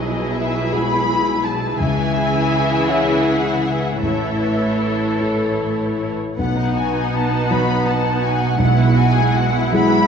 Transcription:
Already playing: B1 B2 F#3 E4 G#4 B4 D#5
0.34 E5
0.72 G#3 E4 F#4 B5
1.45 A5
1.80 C#2 C#3 E3 E4 G#4 E5 G#5
2.88 G#3 E4 C#5 F#5
4.02 A1 A2 E3 E4 A4 C#5 E5
5.20 A3 E4 C#5
6.38 B1 B2 B3 D#4 F#5
6.56 D#4
6.75 F#4 G#5
6.93 D#4
7.13 B3 A5
7.31 D#4
7.50 F#3 D#4 F#4 B4 B5
7.68 D#4
7.86 B3 A5
8.04 D#4
8.22 F#4 G#5
8.40 D#4
8.58 B1 G#3 B3 E4 F#5
8.77 E4
8.94 F#4 G#5
9.13 G#4
9.33 F#4 F#5
9.53 E4
9.72 F#3 G#3 B3 E4 B5
9.90 E4

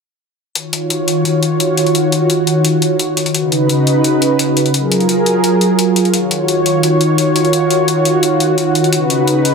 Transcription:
0.55 D#3 F4 F#4 C#5, closed hi-hat
0.73 closed hi-hat
0.90 closed hi-hat
1.08 closed hi-hat
1.25 closed hi-hat
1.43 closed hi-hat
1.60 closed hi-hat
1.77 closed hi-hat
1.86 closed hi-hat
1.95 closed hi-hat
2.12 closed hi-hat
2.30 closed hi-hat
2.47 closed hi-hat
2.65 closed hi-hat
2.82 closed hi-hat
2.99 closed hi-hat
3.17 closed hi-hat
3.26 closed hi-hat
3.34 C#3 D#4 F#4 B4, closed hi-hat
3.52 closed hi-hat
3.69 closed hi-hat
3.87 closed hi-hat
4.04 closed hi-hat
4.22 closed hi-hat
4.39 closed hi-hat
4.57 closed hi-hat
4.66 closed hi-hat
4.74 F#3 F4 G#4 A#4, closed hi-hat
4.92 closed hi-hat
5.00 closed hi-hat
5.09 closed hi-hat
5.26 closed hi-hat
5.44 closed hi-hat
5.61 closed hi-hat
5.79 closed hi-hat
5.96 closed hi-hat
6.05 closed hi-hat
6.14 D#3 F#4 C#5, closed hi-hat
6.31 closed hi-hat
6.48 closed hi-hat
6.66 closed hi-hat
6.83 closed hi-hat
7.01 closed hi-hat
7.18 closed hi-hat
7.36 closed hi-hat
7.45 closed hi-hat
7.53 closed hi-hat
7.71 closed hi-hat
7.88 closed hi-hat
8.05 closed hi-hat
8.23 closed hi-hat
8.40 closed hi-hat
8.58 closed hi-hat
8.75 closed hi-hat
8.84 closed hi-hat
8.93 C#3 D#4 B4, closed hi-hat
9.10 closed hi-hat
9.28 closed hi-hat
9.45 closed hi-hat

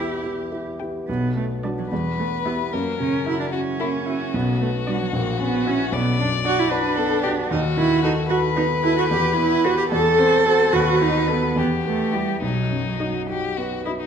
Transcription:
Already playing: E2 B3 E4 G4 G5
0.23 B3 E4 G4
0.52 E4 G4
0.80 B3 E4 G4 G5
1.07 B1 B3
1.36 A3 B3
1.63 G3 D4 F#4 D5
1.78 F#3
1.91 E2 G3 B4
2.19 A3 B3
2.46 B3 E4 G4 E5
2.73 F#2 A#3 A#4
3.00 C#3 C#4
3.26 E4 F#4 E5
3.40 D4
3.52 C#4 E4 F#4
3.80 A#3 E4
4.07 E4 F#4 E5
4.34 B1 B3
4.60 A3 B3
4.87 G3 D4 F#4 D5
5.02 F#3
5.13 A#1 A#3
5.40 B3 C#4
5.66 C#4 E4 F#4 E5
5.92 B1 B3 D5
6.19 F#2 D4
6.44 D4 F#4 D5
6.59 E4
6.71 D4 F#4 B4
6.96 B3 A4
7.23 D4 F#4 G4 D5
7.49 D#2 D#4 F#4
7.77 D#3 E4
8.03 D#4 F#4 A4 B4
8.30 F#4 A4 B4
8.56 B3 D#4
8.83 E4 F#4 A4 B4
8.98 F#4
9.10 E2 G4
9.37 B3 E4
9.64 F#4 G4 B4
9.77 G4
9.91 E2 A4
10.19 C4 C5
10.45 F#4 A4 C5
10.72 D#2 F#4 B4
11.00 B3 D#4
11.28 B3 F#4 A4
11.56 E2 B3 G4
11.84 A3 B3
12.13 G3 E4 G4
12.42 B1 F#3 D#4
12.70 F#2
13.00 D#4 F#4 D#5
13.29 D#4 F#4 G4
13.57 B3 F#4
13.85 D#4 E4 F#4 D#5
14.00 D#4

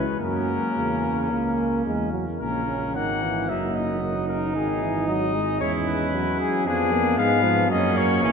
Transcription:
Already playing: G#3 B4
0.20 F#2 F#3 A#3 C#4 A#4
0.76 E2 C#3
1.31 C#2 A#3
1.86 E2 G#3
2.13 F#3
2.40 A#1 C#3 A#3 C#4 A#4
2.68 C#4
2.95 G#1 D#3 A#3 F#5
3.23 E3
3.49 F#1 F#3 A#3 D#4 E5
3.75 D#5
4.02 A#3 D#4
4.28 D#4 A#4
4.55 G#1 D#3 G#4
4.82 E3
5.07 F#3 D#5
5.35 G#3
5.60 E2 G#3 C#4 E4 C#5
5.87 B4
6.14 F#3
6.40 G#4
6.66 F2 F3 B3 D4 G#4
6.92 A#3
7.18 G#2 G#3 B3 F5
7.44 F3
7.70 F#2 F#3 A#3 C#4 D#5
7.97 C#5
8.23 A#1 E3 C#4

